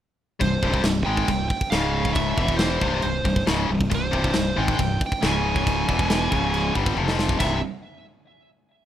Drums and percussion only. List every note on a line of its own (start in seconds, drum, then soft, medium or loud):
0.41 kick loud
0.41 china medium
0.63 kick medium
0.74 kick medium
0.84 snare loud
0.84 china medium
1.17 kick medium
1.28 kick loud
1.28 china medium
1.50 kick medium
1.61 kick medium
1.72 snare loud
1.72 china medium
2.05 kick medium
2.15 kick loud
2.15 china medium
2.38 kick medium
2.48 kick medium
2.59 snare loud
2.59 china medium
2.81 kick loud
3.02 china medium
3.25 kick medium
3.36 kick medium
3.47 snare loud
3.47 china medium
3.81 kick medium
3.91 kick loud
3.91 china medium
4.13 kick medium
4.24 kick medium
4.34 snare loud
4.34 china medium
4.68 kick medium
4.79 kick loud
4.79 china medium
5.01 kick medium
5.12 kick medium
5.23 snare loud
5.23 china medium
5.56 kick medium
5.67 kick loud
5.67 china medium
5.89 kick medium
5.99 kick medium
6.10 snare loud
6.10 china medium
6.32 kick loud
6.54 china medium
6.75 kick medium
6.86 kick medium
6.97 high tom medium
7.08 snare medium
7.19 snare medium
7.29 kick medium
7.40 kick loud
7.40 crash medium